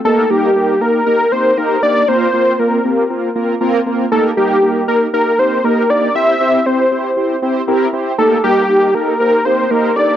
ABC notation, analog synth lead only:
X:1
M:4/4
L:1/8
Q:1/4=118
K:Eblyd
V:1 name="Analog synth lead"
A G2 B B c B d | c2 B2 z4 | A G2 B B c B d | =e2 c2 z4 |
A G2 B B c B d |]